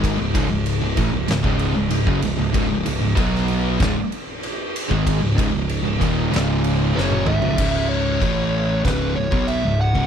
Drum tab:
CC |----------------|----------------|----------------|x---x---x---x---|
RD |x-x-x-x-x-x-x-x-|x-x-x-x-x-x-x-x-|x-x-x-x-x-x-----|----------------|
SD |--------o-------|-----o--o-------|--------o---o---|--------o-------|
T1 |----------------|----------------|-------------o--|----------------|
T2 |----------------|----------------|--------------o-|----------------|
FT |----------------|----------------|---------------o|----------------|
BD |o-o---o--o---o--|o---o---o------o|o-o---o---------|o---o---o--o---o|